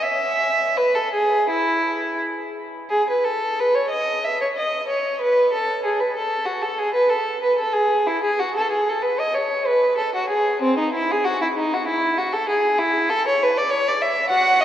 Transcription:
0.03 E5
0.77 B4
0.95 A4
1.13 G#4
1.50 E4
2.90 G#4
3.10 B4
3.24 A4
3.59 B4
3.75 C#5
3.90 D#5
4.24 E5
4.41 C#5
4.56 D#5
4.89 C#5
5.21 B4
5.53 A4
5.85 G#4
6.00 B4
6.16 A4
6.45 F#4
6.62 A4
6.79 G#4
6.94 B4
7.09 A4
7.43 B4
7.59 A4
7.73 G#4
8.07 E4
8.24 G#4
8.39 F#4
8.56 A4
8.72 G#4
8.89 A4
9.02 B4
9.20 D#5
9.34 C#5
9.66 B4
9.98 A4
10.15 F#4
10.29 G#4
10.62 C4
10.78 D#4
10.94 E4
11.11 G#4
11.24 F#4
11.42 E4
11.57 D#4
11.74 F#4
11.87 E4
12.18 F#4
12.33 A4
12.49 G#4
12.79 E4
13.10 A4
13.27 C#5
13.43 B4
13.57 D5
13.70 C#5
13.88 D5
14.02 E5
14.29 F#4 F#5
14.61 D#5

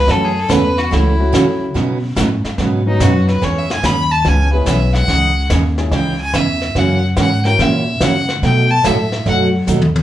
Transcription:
Already playing: B4
0.07 F#2 C#3 E3 A3 C#4 F#4 A4, brush sweep, kick, snare
0.25 G#4
0.39 A4
0.49 E2 C#3 E3 A3 C#4 F#4 B4, kick, snare, hi-hat pedal
0.78 F#4, snare
0.91 C#2 C#3 E3 A3 C#4 E4 F#4, brush sweep, kick, snare
1.19 F#3 A3 C#4 E4 F#4
1.32 C#3 E3 A3 C#4 F#4, kick, snare, hi-hat pedal
1.74 B2 C#3 F#3 B3 D#4 B4, brush sweep, kick, snare
2.16 A2 B2 C#3 F#3 B3 D#4 B4, kick, snare, hi-hat pedal
2.44 muted upright bass stroke, snare
2.58 G#2 B2 C#3 F#3 B3 D#4 B4, brush sweep, kick, snare
2.86 F#3 B3 C#4 D#4 F#4
3.00 F#2 B2 C#3 F#3 B3 D#4 F#4 B4, kick, snare, hi-hat pedal
3.28 B4, snare
3.42 E2 E3 B3 C#4 G#4 C#5, brush sweep, kick, snare
3.58 E5
3.70 G#5, snare
3.83 D#2 E3 B3 C#4 G#4 B5, kick, snare, hi-hat pedal
4.12 A5
4.24 C#2 E3 B3 C#4 G#4 G#5, brush sweep, kick, snare
4.53 G#3 B3 C#4 E4 G#4 B4
4.66 B1 E3 B3 C#4 G#4 E5, kick, snare, hi-hat pedal
4.94 F#5, snare
5.07 C#2 C#3 E3 D#4 G#4, brush sweep, kick, snare
5.50 D#2 C#3 E3 D#4 G#4, kick, snare, hi-hat pedal
5.78 G#3 C#4 D#4 E4 G#4, snare
5.91 C#2 C#3 E3 D#4 G#4 G5, brush sweep, kick, snare
6.21 G#5
6.33 E2 C#3 E3 D#4 G#4 E5, kick, snare, hi-hat pedal
6.61 snare
6.75 F#2 C#3 E3 A#3 C#4 F#4 F#5, brush sweep, kick, snare
7.17 G#2 C#3 E3 A#3 C#4 F#4 F#5, kick, snare, hi-hat pedal
7.45 A#3 C#4 E4 F#4 A#4 G5, snare
7.59 A#2 C#3 E3 A#3 C#4 F#4 E5, brush sweep, kick, snare
8.00 C#3 E3 A#3 C#4 F#4 F#5, kick, snare, hi-hat pedal
8.29 snare
8.42 B2 F#3 A3 D#4 F#4 G5, brush sweep, kick, snare
8.70 A5
8.84 A2 B2 F#3 A3 D#4 F#4 E5, kick, snare, hi-hat pedal
9.12 snare
9.26 F#2 B2 F#3 A3 D#4 F#4 F#5, brush sweep, kick, snare
9.67 D#2 B2 F#3 A3 D#4 F#4, hi-hat pedal
9.82 high tom
9.96 high tom

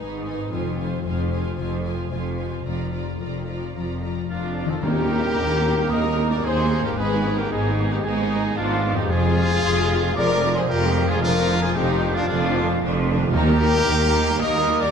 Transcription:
Already playing: G#2 D#3 D#4 B4
0.00 G#1 G#2 D#4 G#4 B4 G#5
0.18 D#4
0.25 D#4 B4 G#5
0.34 B4
0.50 F1 F2 F4 C5 G#5
0.69 G#4
0.77 F4 C5 G#5
0.87 C5
1.04 F1 F2 G#4 C5 G#5
1.08 F4
1.22 F4
1.31 F4 C5 G#5
1.40 C5
1.57 F1 F2 C3 F4 C5 G#5
1.76 G#4
1.84 F4 C5 G#5
1.94 C5
2.10 F1 F2 F4 G#4 C5 G#5
2.30 F4
2.37 F4 C5 G#5
2.49 C5
2.65 F1 F2 F4 D5 A#5
2.84 A#4
2.92 F4 D5 A#5
3.02 D5
3.19 F1 F2 F4 A#4 D5 A#5
3.38 F4
3.46 F4 D5 A#5
3.57 D5
3.75 F1 F2 F3 F4 D5 A#5
3.94 A#4
4.02 F4 D5 A#5
4.12 D5
4.30 F1 F2 D4 F4 A#4 D5 F5 A#5
4.47 F4
4.56 F4 D5 A#5
4.65 D#3 D5
4.70 F4 A4 G5 A5
4.74 A#4
4.82 D#2 D#3 A#3 D#4 G4 A#4 A#5, tam-tam
4.86 A#3
4.97 G3 G4
5.08 A#3 D#4
5.23 G3 G4
5.36 D#2 A#3 D#4
5.49 G3 G4
5.63 A#3 D#4
5.77 G3 G4
5.90 D#2 A#3 D#4 A#4 D#5 D#6
6.04 G3 G4
6.18 A#3 D#4
6.30 G3 G4 A#4 D5 D6
6.43 D#2 A#3 D#4 G#4 C5 C6
6.59 G3 G4
6.72 A#3 D#4
6.79 G#2
6.84 D#3 G3 G4 A#4 A#5
6.88 G#3
6.93 G#1 B4
6.97 G#2 G#3 B3 D#4 G#4 B4 B5
7.12 G#3 B3
7.24 B3 D#4
7.36 G#3 B3 G4 A#4 A#5
7.49 G#1 G#2 B3 D#4 G#4 G#5
7.66 G#3 B3
7.79 B3 D#4
7.90 B3 D#4 G4 G5
7.94 G#3
8.03 G#1 G#2 B3 D#4 G#4 G#5
8.19 G#3 B3
8.32 B3 D#4
8.46 G#3 B3
8.55 G#1 G#2 D4 F4 F5
8.60 B3 D#4
8.73 G#3 B3
8.86 B3 D#4
8.91 F2 F4
8.96 G#3 D#4 G4 G5
9.00 B3 G4
9.05 C5
9.09 F1 F2 C3 F3 F4 G#4 G#5
9.14 F3
9.26 G#3 G#4
9.39 F3 F4
9.52 G#3 G#4
9.63 F1 F2 F3 F4
9.79 G#3 G#4
9.92 F3 F4
10.04 G#3 G#4
10.15 F1 F2 F3 F4 A#4 D5 D6
10.30 G#3 G#4
10.43 F3 F4
10.55 G#3 G#4 C5 C6
10.67 F1 F2 F4 G4 A#4 A#5
10.72 F3
10.84 G#3 G#4
10.98 F3 F4
11.04 F2 G#4
11.08 G#3 F4 G#4 D5 G#5
11.13 F4
11.17 A#4
11.22 F1 F2 A#2 D3 D4 F4 A#4 A#5
11.36 F3 F4
11.49 D3 D4
11.61 F3 F4 G#4 G#5
11.75 F1 F2 D3 D4 D#4 G4 G5
11.90 F3 F4
12.02 D3 D4
12.14 F3 D4 F4 F5
12.27 F1 F2 D3 D4 F4 F5
12.43 F3 F4
12.55 D3 D4
12.69 F3 F4
12.81 F1 F2 D3 D4
12.95 F3 F4
13.09 D3 D4
13.15 D#3
13.21 F3 F4 G5
13.29 G4 A#4
13.33 D#2 D#3 A#3 D#4 G4 A#4 A#5
13.48 G3 G4
13.61 A#3 D#4
13.74 G3 G4
13.87 D#2 A#3 D#4
14.01 G3 G4
14.15 A#3 D#4
14.27 G3 G4
14.39 D#2 A#3 D#4 A#4 D#5 D#6
14.54 G3 G4
14.67 A#3 D#4
14.80 G3 G4 A#4 D5 D6

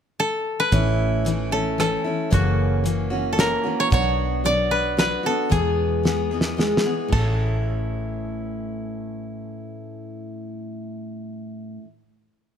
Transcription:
0.20 A4
0.60 B4
0.72 A1 A2 E3 A3 C#4 E4, kick, closed hi-hat
1.25 E3 A3 C#4 E4, closed hi-hat
1.51 A3 C#4 E4 A4
1.78 E3 A3 C#4 E4 A4, cross-stick, closed hi-hat
2.04 A3 C#4 E4
2.30 F#1 F#2 C#3 E3 A#3 C#4 F#4, kick, closed hi-hat
2.84 E3 A#3 C#4 F#4, closed hi-hat
3.10 E3 A#3 C#4 F#4
3.33 E3 A4
3.38 A#3 C#4 F#4 A#4, snare, closed hi-hat
3.64 E3 A#3 C#4 F#4
3.80 C#5
3.90 B1 B2 F#3 B3 D4 F#4 C#5, kick, closed hi-hat
4.44 F#3 B3 D4 F#4 D5, closed hi-hat
4.71 B4
4.97 F#3 B3 D4 F#4 B4, snare, closed hi-hat
5.23 B3 D4 F#4 A4
5.50 E2 B2 E3 G#3 B3 G#4, kick, closed hi-hat
6.03 E3 G#3 B3 G#4, snare
6.31 E3 G#3 B3 G#4
6.41 snare
6.57 E3 G#3 B3 G#4, snare
6.77 snare
6.84 E3 G#3 B3 G#4
7.08 A2 E3
7.12 A1 A3 A4, kick, floor tom, crash
7.18 C#4 E4

